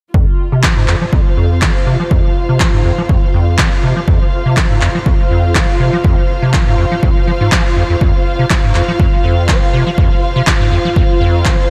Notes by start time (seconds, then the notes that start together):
0.14 F2 F4, kick
0.52 C3
0.63 F3 C5, kick, clap
0.77 G#2
0.88 F2, clap
1.01 F3
1.13 F2 F5, kick
1.37 F2
1.62 F3, kick, clap
1.86 C3
2.00 F3
2.11 F2, kick
2.49 C3
2.60 F3, kick, clap
2.74 G#2
2.85 F2
2.98 F3
3.09 F2, kick
3.34 F2
3.58 F3, kick, clap
3.83 C3
3.96 F3
4.08 F2, kick
4.46 C3
4.57 F3, kick, clap
4.70 G#2
4.81 F2, clap
4.95 F3
5.06 F2, kick
5.31 F2
5.55 F3, kick, clap
5.80 C3
5.93 F3
6.04 F2, kick
6.42 C3
6.54 F3, kick, clap
6.67 G#2
6.78 F2
6.92 F3
7.03 F2, kick
7.27 F3
7.41 G#2
7.52 F3, kick, clap
7.77 F2
7.90 F2
8.01 F2, kick
8.39 C3
8.50 F3, kick, clap
8.64 G#2
8.75 F2, clap
8.88 F3
8.99 F2, kick
9.24 F2
9.49 F3, kick, clap
9.73 C3
9.87 F3
9.98 F2, kick
10.36 C3
10.47 F3, kick, clap
10.60 G#2
10.72 F2
10.85 F3
10.96 F2, kick
11.21 F2
11.45 F3, kick, clap